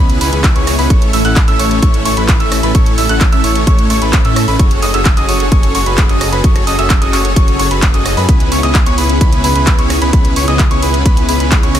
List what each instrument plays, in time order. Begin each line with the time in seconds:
Already playing: detuned saw bass C#2, supersaw synth B3 C#4 E4 G#4 B4, grand piano B5
0.10 closed hi-hat
0.21 detuned saw bass C#2, supersaw synth B3 C#4 E4 G#4 B4, grand piano B5, open hi-hat
0.32 detuned saw bass C#2, supersaw synth B3 C#4 E4 G#4 B4, grand piano B5, closed hi-hat
0.44 kick, clap, closed hi-hat
0.56 detuned saw bass C#2, supersaw synth B3 C#4 E4 G#4 C#5, grand piano C#6, closed hi-hat
0.67 cross-stick, open hi-hat
0.79 detuned saw bass C#2, supersaw synth B3 C#4 E4 G#4 B4, grand piano B5, open hi-hat
0.90 supersaw synth A3 C#4 E4 A4 C#5, grand piano C#6, kick, closed hi-hat
1.02 closed hi-hat
1.13 detuned saw bass A1, supersaw synth A3 C#4 E4 A4 E5, grand piano E6, open hi-hat
1.25 detuned saw bass A1, supersaw synth A3 C#4 E4 A4 F#5, grand piano F#6, closed hi-hat
1.36 kick, clap, closed hi-hat
1.48 detuned saw bass A1, supersaw synth A3 C#4 E4 A4 E5, grand piano E6, closed hi-hat
1.59 detuned saw bass A1, supersaw synth A3 C#4 E4 A4 C#5, grand piano C#6, open hi-hat
1.71 closed hi-hat
1.82 supersaw synth A3 C#4 E4 A4 C#5, grand piano C#6, kick, closed hi-hat
1.94 closed hi-hat
2.05 detuned saw bass A1, supersaw synth A3 C#4 E4 A4 C#5, grand piano C#6, open hi-hat
2.17 detuned saw bass A1, supersaw synth A3 C#4 E4 A4 B4, grand piano B5, closed hi-hat
2.28 kick, clap, closed hi-hat
2.40 detuned saw bass A1, supersaw synth A3 C#4 E4 A4 E5, grand piano E6, closed hi-hat
2.52 cross-stick, open hi-hat
2.63 detuned saw bass A1, supersaw synth A3 C#4 E4 A4 B4, grand piano B5, closed hi-hat
2.75 supersaw synth A3 C#4 E4 A4 C#5, grand piano C#6, kick, closed hi-hat
2.86 closed hi-hat
2.98 detuned saw bass A1, supersaw synth A3 C#4 E4 A4 E5, grand piano E6, open hi-hat
3.09 detuned saw bass A1, supersaw synth A3 C#4 E4 A4 F#5, grand piano F#6, closed hi-hat
3.21 kick, clap, closed hi-hat
3.32 detuned saw bass A1, supersaw synth A3 C#4 E4 A4 E5, grand piano E6, closed hi-hat
3.44 detuned saw bass A1, supersaw synth A3 C#4 E4 A4 C#5, grand piano C#6, open hi-hat
3.56 closed hi-hat
3.67 detuned saw bass A1, supersaw synth A3 C#4 E4 A4 C#5, grand piano C#6, kick, closed hi-hat
3.79 closed hi-hat
3.90 detuned saw bass A1, supersaw synth A3 C#4 E4 A4 C#5, grand piano C#6, open hi-hat
4.02 detuned saw bass A1, supersaw synth A3 C#4 E4 A4 B4, grand piano B5, closed hi-hat
4.13 kick, clap, closed hi-hat
4.25 detuned saw bass A2, supersaw synth A3 C#4 E4 A4 E5, grand piano E6, closed hi-hat
4.36 cross-stick, open hi-hat
4.48 detuned saw bass A1, supersaw synth A3 C#4 E4 A4 B4, grand piano B5, open hi-hat
4.59 detuned saw bass F#1, supersaw synth C#4 F#4 G#4 A4 C#5, grand piano C#6, kick, closed hi-hat
4.71 closed hi-hat
4.82 detuned saw bass F#1, supersaw synth C#4 F#4 G#4 A4 D#5, grand piano D#6, open hi-hat
4.94 detuned saw bass F#1, supersaw synth C#4 F#4 G#4 A4 E5, grand piano E6, closed hi-hat
5.05 kick, clap, closed hi-hat
5.17 detuned saw bass F#1, supersaw synth C#4 F#4 G#4 A4 D#5, grand piano D#6, closed hi-hat
5.29 detuned saw bass F#1, supersaw synth C#4 F#4 G#4 A4 C#5, grand piano C#6, open hi-hat
5.40 closed hi-hat
5.52 supersaw synth C#4 F#4 G#4 A4 C#5, grand piano C#6, kick, closed hi-hat
5.63 closed hi-hat
5.75 detuned saw bass F#1, supersaw synth C#4 F#4 G#4 A4 C#5, grand piano C#6, open hi-hat
5.86 detuned saw bass F#1, supersaw synth C#4 F#4 G#4 A4 B4, grand piano B5, closed hi-hat
5.98 kick, clap, closed hi-hat
6.09 detuned saw bass F#1, supersaw synth C#4 F#4 G#4 A4 D#5, grand piano D#6, closed hi-hat
6.21 cross-stick, open hi-hat
6.32 detuned saw bass F#1, supersaw synth C#4 F#4 G#4 A4 B4, grand piano B5, closed hi-hat
6.44 supersaw synth C#4 F#4 G#4 A4 C#5, grand piano C#6, kick, closed hi-hat
6.56 cross-stick, closed hi-hat
6.67 detuned saw bass F#1, supersaw synth C#4 F#4 G#4 A4 D#5, grand piano D#6, open hi-hat
6.79 detuned saw bass F#1, supersaw synth C#4 F#4 G#4 A4 E5, grand piano E6, closed hi-hat
6.90 kick, clap, closed hi-hat
7.02 detuned saw bass F#1, supersaw synth C#4 F#4 G#4 A4 D#5, grand piano D#6, closed hi-hat
7.13 detuned saw bass F#1, supersaw synth C#4 F#4 G#4 A4 C#5, grand piano C#6, clap, open hi-hat
7.25 closed hi-hat
7.36 detuned saw bass F#1, supersaw synth C#4 F#4 G#4 A4 C#5, grand piano C#6, kick, closed hi-hat
7.48 closed hi-hat
7.59 detuned saw bass F#1, supersaw synth C#4 F#4 G#4 A4 C#5, grand piano C#6, open hi-hat
7.71 detuned saw bass F#1, supersaw synth C#4 F#4 G#4 A4 B4, grand piano B5, closed hi-hat
7.82 kick, clap, closed hi-hat
7.94 detuned saw bass F#1, supersaw synth C#4 F#4 G#4 A4 D#5, grand piano D#6, closed hi-hat
8.06 cross-stick, open hi-hat
8.17 detuned saw bass F#2, supersaw synth C#4 F#4 G#4 A4 B4, grand piano B5, open hi-hat
8.29 detuned saw bass C#2, supersaw synth B3 C#4 E4 G#4 B4, grand piano B5, kick, closed hi-hat
8.40 closed hi-hat
8.52 detuned saw bass C#2, supersaw synth B3 C#4 E4 G#4 C#5, grand piano C#6, open hi-hat
8.63 detuned saw bass C#2, supersaw synth B3 C#4 E4 G#4 D#5, grand piano D#6, closed hi-hat
8.75 kick, clap, closed hi-hat
8.86 detuned saw bass C#2, supersaw synth B3 C#4 E4 G#4 C#5, grand piano C#6, closed hi-hat
8.98 detuned saw bass C#2, supersaw synth B3 C#4 E4 G#4 B4, grand piano B5, open hi-hat
9.09 closed hi-hat
9.21 supersaw synth B3 C#4 E4 G#4 B4, grand piano B5, kick, closed hi-hat
9.33 closed hi-hat
9.44 detuned saw bass C#2, supersaw synth B3 C#4 E4 G#4 B4, grand piano B5, open hi-hat
9.55 detuned saw bass C#2, supersaw synth B3 C#4 E4 G#4 B4, grand piano B5, closed hi-hat
9.67 kick, clap, closed hi-hat
9.79 detuned saw bass C#2, supersaw synth B3 C#4 E4 G#4 C#5, grand piano C#6, closed hi-hat
9.90 cross-stick, open hi-hat
10.02 detuned saw bass C#2, supersaw synth B3 C#4 E4 G#4 B4, grand piano B5, closed hi-hat
10.13 detuned saw bass C#2, supersaw synth B3 C#4 E4 G#4 B4, grand piano B5, kick, closed hi-hat
10.25 closed hi-hat
10.36 detuned saw bass C#2, supersaw synth B3 C#4 E4 G#4 C#5, grand piano C#6, open hi-hat
10.48 detuned saw bass C#2, supersaw synth B3 C#4 E4 G#4 D#5, grand piano D#6, closed hi-hat
10.59 kick, clap, closed hi-hat
10.71 detuned saw bass C#2, supersaw synth B3 C#4 E4 G#4 C#5, grand piano C#6, closed hi-hat
10.82 detuned saw bass C#2, supersaw synth B3 C#4 E4 G#4 B4, grand piano B5, open hi-hat
10.94 closed hi-hat
11.05 detuned saw bass C#2, supersaw synth B3 C#4 E4 G#4 B4, grand piano B5, kick, closed hi-hat
11.17 closed hi-hat
11.29 detuned saw bass C#2, supersaw synth B3 C#4 E4 G#4 B4, grand piano B5, open hi-hat
11.40 detuned saw bass C#2, supersaw synth B3 C#4 E4 G#4 B4, grand piano B5, closed hi-hat
11.52 kick, clap, closed hi-hat
11.63 detuned saw bass C#2, supersaw synth B3 C#4 E4 G#4 C#5, grand piano C#6, closed hi-hat
11.75 cross-stick, open hi-hat